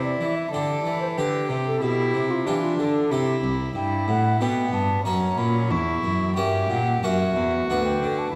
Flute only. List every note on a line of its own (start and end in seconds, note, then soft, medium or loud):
0.04 0.38 D5 medium
0.36 0.53 E5 soft
0.52 1.00 D5 medium
1.01 1.07 C5 medium
1.17 1.44 B4 medium
1.67 1.83 A4 medium
1.82 2.32 G4 medium
2.31 2.48 F4 medium
2.46 2.65 G4 medium
2.63 2.81 F4 medium
2.79 3.13 A4 medium
3.11 3.53 G4 medium
3.76 4.06 G5 medium
4.08 4.40 F#5 medium
4.41 4.73 G5 medium
4.73 5.04 A5 medium
5.05 5.39 A#5 medium
5.38 5.70 B5 medium
5.71 6.36 C#6 medium
6.37 6.72 E5 medium
6.70 7.03 F#5 medium
7.03 7.68 E5 medium
7.68 7.84 F#5 medium
7.85 8.20 G5 medium
8.19 8.35 A5 medium